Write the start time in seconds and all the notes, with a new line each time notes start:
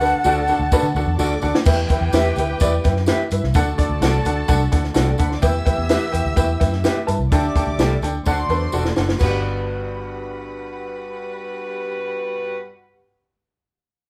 Already playing: D2 D3 A4 F#5 A5
0.01 D4 F#4 A4 B4, tambourine
0.24 D2 D4 F#4 A4 D5 F#5, tambourine
0.48 D4 F#4 A4 F#5, tambourine
0.59 D2
0.72 D4 F#4 A4 B4, kick, tambourine
0.83 D3
0.95 D2 D4 F#4 A4 F#5, tambourine
1.07 E2
1.18 D2 D4 F#4 A4 D5 F#5 D6, tambourine
1.42 D2 D4 F#4 A4 F#5, tambourine
1.55 snare
1.65 E2 E3 E4 G4 B4 G5, kick, crash, tambourine
1.89 E4 B4 G5, kick, closed hi-hat, tambourine
2.01 E2
2.13 E2 E4 G4 B4 E5 G5, snare, closed hi-hat, tambourine
2.36 D2 E4 B4 G5, closed hi-hat, tambourine
2.60 E2 E4 B4 D5, kick, closed hi-hat, tambourine
2.84 F#2 E4 B4 G5, kick, snare, closed hi-hat, tambourine
2.96 snare
3.06 E4 G4 B4 E5 G5, snare, closed hi-hat, tambourine
3.31 G2 E4 B4 E5, closed hi-hat, tambourine
3.44 C2, snare
3.54 D2 D3 A3 D4 F#4 A4 D5 F#5 A5, kick, closed hi-hat, tambourine
3.78 D4 A4 D5, kick, closed hi-hat, tambourine
3.89 D2
4.01 C2 D4 F#4 A4 D5 F#5, snare, closed hi-hat, tambourine
4.25 D2 D4 A4 F#5, closed hi-hat, tambourine
4.48 C2 D4 A4 F#5, kick, closed hi-hat, tambourine
4.72 D2 D4 A4 F#5, kick, snare, closed hi-hat, tambourine
4.84 snare
4.94 C2 D4 F#4 A4 D5 F#5, snare, closed hi-hat, tambourine
5.05 G4 G5
5.13 A4 A5
5.18 D2 D4 A4 B4 F#5 B5, kick, closed hi-hat, tambourine
5.28 C5 C6, snare
5.34 D5 D6
5.42 E2 E3 B3 E4 G4 B4 E5 G5 E6, kick, closed hi-hat, tambourine
5.65 E4 B4 G5, kick, closed hi-hat, tambourine
5.78 E2
5.89 E4 G4 B4 E5, snare, closed hi-hat, tambourine
6.12 E2 E4 B4 G5, closed hi-hat, tambourine
6.25 D2
6.36 E2 E4 B4 G5, kick, closed hi-hat, tambourine
6.60 F#2 E4 B4 G5, kick, snare, closed hi-hat, tambourine
6.72 snare
6.84 E4 G4 B4 E5 G5, snare, closed hi-hat, tambourine
7.07 G2 E4 B4 A5, closed hi-hat, tambourine
7.19 C2
7.31 D2 D3 A3 D4 G4 A4 D5 E5 G5 D6, kick, closed hi-hat, tambourine
7.56 D4 A4 G5, kick, closed hi-hat, tambourine
7.67 D2
7.78 C2 D4 G4 A4 D5 G5, snare, closed hi-hat, tambourine
8.02 D2 D4 A4 G5, closed hi-hat, tambourine
8.26 D2 D3 A3 D4 F#4 A4 C5 D5 F#5 C6, kick, tambourine
8.49 E2 D4 A4 B4, tambourine
8.72 E1 D4 F#4 A4 D5 F#5, tambourine
8.85 snare
8.96 F#1 D4 A4 F#5, snare, tambourine
9.09 snare
9.19 G1 G2 G3 B3 F#4 G4 B4 F#5 B5, kick, crash, tambourine
9.24 D5 F#5